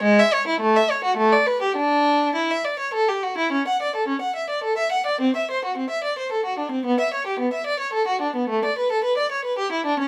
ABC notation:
X:1
M:3/4
L:1/16
Q:1/4=107
K:Amix
V:1 name="Violin"
^G, e c E A, e c F A, d B =G | D4 E e d c A G F E | C f d A C f e d A e f d | =C e =c F C e d c A F D C |
B, e c G B, e d c A F D B, | A, d B A B d c B G E D C |]